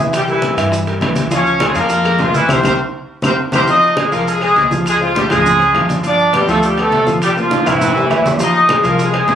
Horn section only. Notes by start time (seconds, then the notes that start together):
0.15 G3 G4
0.30 E3 E4
1.34 C#4 C#5
1.64 G#3 G#4
1.77 A#3 A#4
2.21 F3 F4
2.36 E3 E4
2.50 C4 G4 A#4 C5
2.64 C4 G4 A#4 C5
3.24 C4 G4 A#4 C5
3.54 C4 G4 A#4 C5
3.68 D#4 D#5
3.98 G#3 G#4
4.12 A#3 A#4
4.28 G#3 G#4
4.43 G#3 G#4
4.88 G#3 G#4
5.01 F3 F4
5.17 G3 G4
5.31 G#3 G#4
6.06 D4 D5
6.34 G3 G4
6.49 A3 A4
6.64 G3 G4
6.79 A3 A4
7.23 G3 G4
7.38 F3 F4
7.67 E3 E4
8.42 D#4 D#5
8.71 G#3 G#4
8.87 A#3 A#4
9.02 G#3 G#4
9.17 G#3 G#4